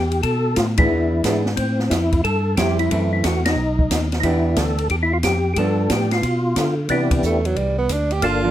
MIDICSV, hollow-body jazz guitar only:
0, 0, Header, 1, 2, 480
1, 0, Start_track
1, 0, Key_signature, 0, "major"
1, 0, Tempo, 332779
1, 346, Time_signature, 4, 2, 24, 8
1, 12272, End_track
2, 0, Start_track
2, 0, Title_t, "Hollow-body jazz guitar"
2, 0, Program_c, 0, 26
2, 1126, Note_on_c, 0, 52, 55
2, 1139, Note_on_c, 0, 62, 59
2, 1140, Note_on_c, 0, 59, 55
2, 1144, Note_on_c, 0, 68, 60
2, 1748, Note_off_c, 0, 52, 0
2, 1755, Note_off_c, 0, 59, 0
2, 1755, Note_off_c, 0, 62, 0
2, 1758, Note_off_c, 0, 68, 0
2, 1785, Note_on_c, 0, 52, 45
2, 1792, Note_on_c, 0, 59, 51
2, 1804, Note_on_c, 0, 62, 54
2, 1805, Note_on_c, 0, 68, 54
2, 2067, Note_off_c, 0, 52, 0
2, 2070, Note_off_c, 0, 59, 0
2, 2077, Note_off_c, 0, 62, 0
2, 2077, Note_off_c, 0, 68, 0
2, 3725, Note_on_c, 0, 55, 61
2, 3732, Note_on_c, 0, 60, 61
2, 3735, Note_on_c, 0, 64, 63
2, 4198, Note_off_c, 0, 60, 0
2, 4199, Note_off_c, 0, 55, 0
2, 4204, Note_off_c, 0, 64, 0
2, 4204, Note_on_c, 0, 57, 58
2, 4206, Note_on_c, 0, 52, 62
2, 4220, Note_on_c, 0, 60, 62
2, 4927, Note_off_c, 0, 57, 0
2, 4928, Note_off_c, 0, 52, 0
2, 4935, Note_off_c, 0, 60, 0
2, 6121, Note_on_c, 0, 52, 62
2, 6126, Note_on_c, 0, 59, 60
2, 6135, Note_on_c, 0, 67, 66
2, 6137, Note_on_c, 0, 62, 70
2, 6846, Note_off_c, 0, 52, 0
2, 6848, Note_off_c, 0, 59, 0
2, 6852, Note_off_c, 0, 67, 0
2, 6854, Note_off_c, 0, 62, 0
2, 8046, Note_on_c, 0, 53, 61
2, 8055, Note_on_c, 0, 59, 61
2, 8065, Note_on_c, 0, 62, 68
2, 8767, Note_off_c, 0, 53, 0
2, 8772, Note_off_c, 0, 59, 0
2, 8777, Note_off_c, 0, 62, 0
2, 9958, Note_on_c, 0, 52, 53
2, 9973, Note_on_c, 0, 59, 58
2, 9977, Note_on_c, 0, 62, 58
2, 11292, Note_off_c, 0, 52, 0
2, 11299, Note_off_c, 0, 59, 0
2, 11301, Note_off_c, 0, 62, 0
2, 12173, Note_on_c, 0, 53, 59
2, 12178, Note_on_c, 0, 58, 67
2, 12183, Note_on_c, 0, 62, 62
2, 12272, Note_off_c, 0, 53, 0
2, 12272, Note_off_c, 0, 58, 0
2, 12272, Note_off_c, 0, 62, 0
2, 12272, End_track
0, 0, End_of_file